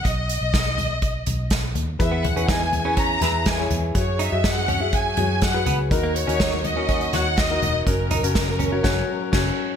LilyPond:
<<
  \new Staff \with { instrumentName = "Violin section" } { \time 4/4 \key fis \mixolydian \tempo 4 = 123 dis''2. r4 | e''8 fis''8 gis''4 ais''4 gis''8 r8 | cis''8 e''8 fis''4 gis''4 fis''8 r8 | ais'8 cis''4 dis''4 fis''8 dis''4 |
ais'2. r4 | }
  \new Staff \with { instrumentName = "Grand piano" } { \time 4/4 \key fis \mixolydian r1 | <e' gis' b'>8 r16 <e' gis' b'>8. r16 <e' gis' b'>8 r16 <e' gis' b'>8 r16 <e' gis' cis''>8 r16 | <fis' gis' cis''>8 r16 <fis' gis' dis''>8. r16 <fis' gis' e''>8 r16 <fis' gis' cis''>8 r16 <fis' gis' b'>8 r16 | <dis' fis' ais'>8 r16 <dis' fis' ais'>8. r16 <dis' fis' ais'>8 r16 <dis' fis' cis''>8 r16 <dis' fis' ais'>8 r16 |
<cis' fis' ais'>8 r16 <cis' fis' ais'>8. r16 <cis' fis' cis''>16 <cis' fis' cis''>8 r8 <cis' fis'>8 r8 | }
  \new Staff \with { instrumentName = "Grand piano" } { \clef bass \time 4/4 \key fis \mixolydian r1 | e4. r2 r8 | r1 | dis4. r2 r8 |
r1 | }
  \new Staff \with { instrumentName = "Clean electric guitar" } { \time 4/4 \key fis \mixolydian r1 | r16 b16 r16 cis'16 dis'16 r8 cis'16 cis'8 e'16 r4 r16 | r8 dis'16 r8. cis'16 r4. r16 b16 r16 | r16 ais16 r16 cis'16 dis'16 r8 cis'16 cis'8 fis'16 r4 r16 |
r8 dis'16 r8. cis'16 r2 r16 | }
  \new Staff \with { instrumentName = "String section" } { \time 4/4 \key fis \mixolydian r1 | <e b gis'>1 | <fis cis' gis'>1 | <dis ais fis'>1 |
<fis cis' ais'>1 | }
  \new Staff \with { instrumentName = "Fingered electric bass" } { \clef bass \time 4/4 \key fis \mixolydian b,,8. b,,4.~ b,,16 b,,4 dis,8 | e,8. e,4.~ e,16 e,4 e,8 | fis,8. fis,4.~ fis,16 fis,4 cis,8 | dis,8. dis,4.~ dis,16 dis,4 e,,8 |
fis,,8. fis,,4~ fis,,16 fis,,8 r8 fis,,8 r8 | }
  \new DrumStaff \with { instrumentName = "Drums" } \drummode { \time 4/4 <hh bd>8 hh8 <hh bd sn>8 <hh tomfh>8 <hh bd>8 <hh tomfh>8 <hh bd sn>8 <hh tomfh>8 | <hh bd>8 <hh tomfh>16 hh16 <hh bd sn>8 <hh tomfh>8 <hh bd>8 <hh sn tomfh>8 <hh bd sn>8 <hh tomfh>8 | <hh bd>8 hh8 <hh bd sn>8 <hh tomfh>8 <hh bd>8 <hh tomfh>8 <hh bd sn>8 <hh tomfh>8 | <hh bd>8 hh16 hh16 <hh bd sn>8 <hh tomfh>8 <hh bd>16 hh16 <hh sn tomfh>8 <hh bd sn>8 <hh tomfh>8 |
<hh bd>8 <hh tomfh>16 hh16 <hh bd sn>8 <hh tomfh>8 <cymc bd sn>4 <cymc bd sn>4 | }
>>